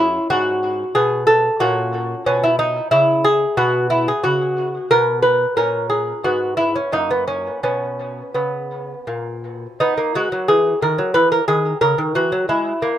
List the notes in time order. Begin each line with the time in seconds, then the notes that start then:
Already playing: F#2 C#4 E4
0.30 G#2 F#4
0.95 B2 G#4
1.27 A4
1.60 A#2 C#4 F#4
2.26 B2 C#4
2.44 E4
2.59 D#4
2.91 C#3 E4
3.24 G#4
3.57 B2 B3 F#4
3.90 E4
4.08 G#4
4.24 C#3 F#4
4.91 B2 A#4
5.22 B4
5.57 A#2 C#4 A#4
5.90 G#4
6.24 G#2 B3 F#4
6.57 E4
6.76 C#4
6.92 F#2 A#3 D#4
7.11 B3
7.28 C#4
7.63 B2 B3 C#4
8.35 C#3 B3
9.07 A#2
9.80 B3 D#4
9.97 A#3
10.15 G#3 F#4
10.32 F#3
10.48 E3 G#4
10.82 D#3 A#4
10.98 F#3
11.14 E3 B4
11.32 A#4
11.48 D#3 G#4
11.81 C#3 A#4
11.98 D#3
12.15 E3 F#4
12.32 F#3
12.49 G#3 E4
12.82 A#3